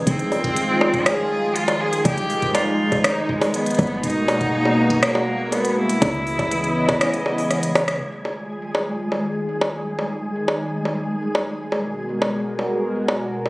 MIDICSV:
0, 0, Header, 1, 6, 480
1, 0, Start_track
1, 0, Key_signature, -4, "minor"
1, 0, Tempo, 495868
1, 66, Time_signature, 4, 2, 24, 8
1, 13060, End_track
2, 0, Start_track
2, 0, Title_t, "Synth texture"
2, 0, Program_c, 0, 99
2, 0, Note_on_c, 0, 56, 81
2, 0, Note_on_c, 0, 92, 79
2, 7734, Note_off_c, 0, 56, 0
2, 7745, Note_on_c, 0, 80, 75
2, 7746, Note_on_c, 0, 56, 77
2, 7755, Note_off_c, 0, 92, 0
2, 13060, Note_off_c, 0, 56, 0
2, 13060, Note_off_c, 0, 80, 0
2, 13060, End_track
3, 0, Start_track
3, 0, Title_t, "Cello"
3, 0, Program_c, 1, 42
3, 67, Note_on_c, 1, 60, 108
3, 1024, Note_on_c, 1, 68, 115
3, 1039, Note_off_c, 1, 60, 0
3, 1506, Note_on_c, 1, 65, 103
3, 1520, Note_off_c, 1, 68, 0
3, 1746, Note_on_c, 1, 68, 108
3, 1760, Note_off_c, 1, 65, 0
3, 1980, Note_off_c, 1, 68, 0
3, 1986, Note_on_c, 1, 67, 116
3, 2466, Note_on_c, 1, 65, 102
3, 2480, Note_off_c, 1, 67, 0
3, 2946, Note_on_c, 1, 63, 102
3, 2960, Note_off_c, 1, 65, 0
3, 3185, Note_on_c, 1, 56, 90
3, 3199, Note_off_c, 1, 63, 0
3, 3425, Note_on_c, 1, 59, 95
3, 3440, Note_off_c, 1, 56, 0
3, 3900, Note_off_c, 1, 59, 0
3, 3906, Note_on_c, 1, 63, 118
3, 4868, Note_on_c, 1, 58, 97
3, 4882, Note_off_c, 1, 63, 0
3, 5347, Note_on_c, 1, 59, 93
3, 5362, Note_off_c, 1, 58, 0
3, 5588, Note_on_c, 1, 64, 99
3, 5602, Note_off_c, 1, 59, 0
3, 7267, Note_off_c, 1, 64, 0
3, 13060, End_track
4, 0, Start_track
4, 0, Title_t, "Analog synth pad"
4, 0, Program_c, 2, 89
4, 65, Note_on_c, 2, 51, 84
4, 65, Note_on_c, 2, 56, 75
4, 66, Note_on_c, 2, 53, 75
4, 66, Note_on_c, 2, 65, 89
4, 1967, Note_off_c, 2, 65, 0
4, 1985, Note_on_c, 2, 63, 93
4, 3630, Note_off_c, 2, 51, 0
4, 3630, Note_off_c, 2, 53, 0
4, 3649, Note_off_c, 2, 63, 0
4, 3665, Note_on_c, 2, 58, 74
4, 3666, Note_on_c, 2, 47, 83
4, 3666, Note_on_c, 2, 66, 92
4, 5787, Note_off_c, 2, 56, 0
4, 5804, Note_off_c, 2, 47, 0
4, 5804, Note_off_c, 2, 58, 0
4, 5804, Note_off_c, 2, 66, 0
4, 5825, Note_on_c, 2, 52, 74
4, 5825, Note_on_c, 2, 59, 75
4, 5825, Note_on_c, 2, 75, 90
4, 5826, Note_on_c, 2, 49, 82
4, 7726, Note_off_c, 2, 52, 0
4, 7726, Note_off_c, 2, 59, 0
4, 7726, Note_off_c, 2, 75, 0
4, 7727, Note_off_c, 2, 49, 0
4, 7744, Note_on_c, 2, 56, 73
4, 7744, Note_on_c, 2, 65, 70
4, 7745, Note_on_c, 2, 51, 76
4, 7745, Note_on_c, 2, 68, 85
4, 9646, Note_off_c, 2, 65, 0
4, 9666, Note_on_c, 2, 63, 71
4, 11309, Note_off_c, 2, 51, 0
4, 11309, Note_off_c, 2, 56, 0
4, 11309, Note_off_c, 2, 68, 0
4, 11329, Note_off_c, 2, 63, 0
4, 11346, Note_on_c, 2, 47, 78
4, 11347, Note_on_c, 2, 56, 70
4, 11347, Note_on_c, 2, 66, 72
4, 11347, Note_on_c, 2, 70, 87
4, 13060, Note_off_c, 2, 47, 0
4, 13060, Note_off_c, 2, 56, 0
4, 13060, Note_off_c, 2, 66, 0
4, 13060, Note_off_c, 2, 70, 0
4, 13060, End_track
5, 0, Start_track
5, 0, Title_t, "FM bass"
5, 0, Program_c, 3, 39
5, 66, Note_on_c, 3, 29, 88
5, 1962, Note_off_c, 3, 29, 0
5, 1985, Note_on_c, 3, 29, 90
5, 3642, Note_off_c, 3, 29, 0
5, 3665, Note_on_c, 3, 32, 90
5, 5562, Note_off_c, 3, 32, 0
5, 5826, Note_on_c, 3, 37, 86
5, 6786, Note_off_c, 3, 37, 0
5, 13060, End_track
6, 0, Start_track
6, 0, Title_t, "Drums"
6, 66, Note_on_c, 9, 36, 103
6, 67, Note_on_c, 9, 42, 76
6, 163, Note_off_c, 9, 36, 0
6, 163, Note_off_c, 9, 42, 0
6, 187, Note_on_c, 9, 42, 35
6, 284, Note_off_c, 9, 42, 0
6, 308, Note_on_c, 9, 46, 68
6, 308, Note_on_c, 9, 60, 52
6, 404, Note_off_c, 9, 46, 0
6, 404, Note_off_c, 9, 60, 0
6, 426, Note_on_c, 9, 36, 121
6, 427, Note_on_c, 9, 42, 35
6, 523, Note_off_c, 9, 36, 0
6, 524, Note_off_c, 9, 42, 0
6, 546, Note_on_c, 9, 42, 76
6, 643, Note_off_c, 9, 42, 0
6, 786, Note_on_c, 9, 60, 78
6, 883, Note_off_c, 9, 60, 0
6, 906, Note_on_c, 9, 36, 100
6, 907, Note_on_c, 9, 42, 34
6, 1003, Note_off_c, 9, 36, 0
6, 1003, Note_off_c, 9, 42, 0
6, 1027, Note_on_c, 9, 37, 117
6, 1027, Note_on_c, 9, 42, 74
6, 1123, Note_off_c, 9, 37, 0
6, 1123, Note_off_c, 9, 42, 0
6, 1506, Note_on_c, 9, 42, 71
6, 1603, Note_off_c, 9, 42, 0
6, 1626, Note_on_c, 9, 42, 50
6, 1626, Note_on_c, 9, 60, 76
6, 1723, Note_off_c, 9, 42, 0
6, 1723, Note_off_c, 9, 60, 0
6, 1866, Note_on_c, 9, 42, 49
6, 1962, Note_off_c, 9, 42, 0
6, 1985, Note_on_c, 9, 42, 79
6, 1985, Note_on_c, 9, 60, 53
6, 1986, Note_on_c, 9, 36, 99
6, 2082, Note_off_c, 9, 42, 0
6, 2082, Note_off_c, 9, 60, 0
6, 2083, Note_off_c, 9, 36, 0
6, 2106, Note_on_c, 9, 42, 34
6, 2202, Note_off_c, 9, 42, 0
6, 2225, Note_on_c, 9, 46, 67
6, 2321, Note_off_c, 9, 46, 0
6, 2345, Note_on_c, 9, 42, 34
6, 2346, Note_on_c, 9, 36, 115
6, 2442, Note_off_c, 9, 42, 0
6, 2443, Note_off_c, 9, 36, 0
6, 2465, Note_on_c, 9, 42, 76
6, 2465, Note_on_c, 9, 60, 77
6, 2562, Note_off_c, 9, 42, 0
6, 2562, Note_off_c, 9, 60, 0
6, 2826, Note_on_c, 9, 36, 102
6, 2826, Note_on_c, 9, 42, 35
6, 2826, Note_on_c, 9, 60, 52
6, 2923, Note_off_c, 9, 36, 0
6, 2923, Note_off_c, 9, 42, 0
6, 2923, Note_off_c, 9, 60, 0
6, 2946, Note_on_c, 9, 37, 114
6, 2946, Note_on_c, 9, 42, 78
6, 3043, Note_off_c, 9, 37, 0
6, 3043, Note_off_c, 9, 42, 0
6, 3186, Note_on_c, 9, 36, 116
6, 3283, Note_off_c, 9, 36, 0
6, 3306, Note_on_c, 9, 46, 67
6, 3306, Note_on_c, 9, 60, 78
6, 3403, Note_off_c, 9, 46, 0
6, 3403, Note_off_c, 9, 60, 0
6, 3426, Note_on_c, 9, 42, 74
6, 3523, Note_off_c, 9, 42, 0
6, 3546, Note_on_c, 9, 42, 47
6, 3586, Note_off_c, 9, 42, 0
6, 3586, Note_on_c, 9, 42, 40
6, 3626, Note_off_c, 9, 42, 0
6, 3626, Note_on_c, 9, 42, 32
6, 3666, Note_off_c, 9, 42, 0
6, 3666, Note_on_c, 9, 36, 83
6, 3666, Note_on_c, 9, 42, 28
6, 3666, Note_on_c, 9, 46, 66
6, 3666, Note_on_c, 9, 60, 54
6, 3706, Note_off_c, 9, 42, 0
6, 3706, Note_on_c, 9, 42, 21
6, 3746, Note_off_c, 9, 42, 0
6, 3746, Note_on_c, 9, 42, 18
6, 3763, Note_off_c, 9, 36, 0
6, 3763, Note_off_c, 9, 46, 0
6, 3763, Note_off_c, 9, 60, 0
6, 3842, Note_off_c, 9, 42, 0
6, 3906, Note_on_c, 9, 36, 100
6, 3906, Note_on_c, 9, 42, 78
6, 3966, Note_off_c, 9, 42, 0
6, 3966, Note_on_c, 9, 42, 37
6, 4003, Note_off_c, 9, 36, 0
6, 4063, Note_off_c, 9, 42, 0
6, 4146, Note_on_c, 9, 46, 63
6, 4146, Note_on_c, 9, 60, 85
6, 4243, Note_off_c, 9, 46, 0
6, 4243, Note_off_c, 9, 60, 0
6, 4266, Note_on_c, 9, 36, 118
6, 4266, Note_on_c, 9, 42, 33
6, 4363, Note_off_c, 9, 36, 0
6, 4363, Note_off_c, 9, 42, 0
6, 4505, Note_on_c, 9, 60, 57
6, 4602, Note_off_c, 9, 60, 0
6, 4745, Note_on_c, 9, 42, 36
6, 4746, Note_on_c, 9, 36, 103
6, 4842, Note_off_c, 9, 42, 0
6, 4843, Note_off_c, 9, 36, 0
6, 4866, Note_on_c, 9, 37, 109
6, 4866, Note_on_c, 9, 42, 75
6, 4962, Note_off_c, 9, 37, 0
6, 4962, Note_off_c, 9, 42, 0
6, 4986, Note_on_c, 9, 60, 77
6, 5083, Note_off_c, 9, 60, 0
6, 5346, Note_on_c, 9, 42, 74
6, 5346, Note_on_c, 9, 60, 54
6, 5443, Note_off_c, 9, 42, 0
6, 5443, Note_off_c, 9, 60, 0
6, 5466, Note_on_c, 9, 42, 54
6, 5563, Note_off_c, 9, 42, 0
6, 5706, Note_on_c, 9, 42, 52
6, 5803, Note_off_c, 9, 42, 0
6, 5826, Note_on_c, 9, 36, 100
6, 5826, Note_on_c, 9, 42, 83
6, 5826, Note_on_c, 9, 60, 83
6, 5923, Note_off_c, 9, 36, 0
6, 5923, Note_off_c, 9, 42, 0
6, 5923, Note_off_c, 9, 60, 0
6, 5946, Note_on_c, 9, 42, 37
6, 6043, Note_off_c, 9, 42, 0
6, 6067, Note_on_c, 9, 46, 64
6, 6164, Note_off_c, 9, 46, 0
6, 6186, Note_on_c, 9, 36, 115
6, 6186, Note_on_c, 9, 42, 37
6, 6186, Note_on_c, 9, 60, 56
6, 6283, Note_off_c, 9, 36, 0
6, 6283, Note_off_c, 9, 42, 0
6, 6283, Note_off_c, 9, 60, 0
6, 6306, Note_on_c, 9, 42, 80
6, 6403, Note_off_c, 9, 42, 0
6, 6426, Note_on_c, 9, 42, 36
6, 6523, Note_off_c, 9, 42, 0
6, 6666, Note_on_c, 9, 36, 102
6, 6666, Note_on_c, 9, 42, 36
6, 6666, Note_on_c, 9, 60, 86
6, 6763, Note_off_c, 9, 36, 0
6, 6763, Note_off_c, 9, 42, 0
6, 6763, Note_off_c, 9, 60, 0
6, 6786, Note_on_c, 9, 37, 115
6, 6786, Note_on_c, 9, 42, 81
6, 6883, Note_off_c, 9, 37, 0
6, 6883, Note_off_c, 9, 42, 0
6, 6907, Note_on_c, 9, 42, 37
6, 7004, Note_off_c, 9, 42, 0
6, 7026, Note_on_c, 9, 60, 56
6, 7123, Note_off_c, 9, 60, 0
6, 7146, Note_on_c, 9, 46, 60
6, 7243, Note_off_c, 9, 46, 0
6, 7266, Note_on_c, 9, 37, 60
6, 7266, Note_on_c, 9, 42, 78
6, 7363, Note_off_c, 9, 37, 0
6, 7363, Note_off_c, 9, 42, 0
6, 7386, Note_on_c, 9, 42, 56
6, 7482, Note_off_c, 9, 42, 0
6, 7506, Note_on_c, 9, 37, 65
6, 7506, Note_on_c, 9, 46, 62
6, 7506, Note_on_c, 9, 60, 84
6, 7603, Note_off_c, 9, 37, 0
6, 7603, Note_off_c, 9, 46, 0
6, 7603, Note_off_c, 9, 60, 0
6, 7627, Note_on_c, 9, 37, 85
6, 7627, Note_on_c, 9, 42, 51
6, 7723, Note_off_c, 9, 37, 0
6, 7723, Note_off_c, 9, 42, 0
6, 7987, Note_on_c, 9, 60, 50
6, 8083, Note_off_c, 9, 60, 0
6, 8467, Note_on_c, 9, 60, 72
6, 8564, Note_off_c, 9, 60, 0
6, 8826, Note_on_c, 9, 60, 48
6, 8923, Note_off_c, 9, 60, 0
6, 9307, Note_on_c, 9, 60, 71
6, 9403, Note_off_c, 9, 60, 0
6, 9667, Note_on_c, 9, 60, 48
6, 9764, Note_off_c, 9, 60, 0
6, 10146, Note_on_c, 9, 60, 70
6, 10243, Note_off_c, 9, 60, 0
6, 10506, Note_on_c, 9, 60, 48
6, 10603, Note_off_c, 9, 60, 0
6, 10986, Note_on_c, 9, 60, 71
6, 11083, Note_off_c, 9, 60, 0
6, 11346, Note_on_c, 9, 60, 50
6, 11443, Note_off_c, 9, 60, 0
6, 11826, Note_on_c, 9, 60, 70
6, 11923, Note_off_c, 9, 60, 0
6, 12186, Note_on_c, 9, 60, 45
6, 12283, Note_off_c, 9, 60, 0
6, 12665, Note_on_c, 9, 60, 69
6, 12762, Note_off_c, 9, 60, 0
6, 13026, Note_on_c, 9, 60, 44
6, 13060, Note_off_c, 9, 60, 0
6, 13060, End_track
0, 0, End_of_file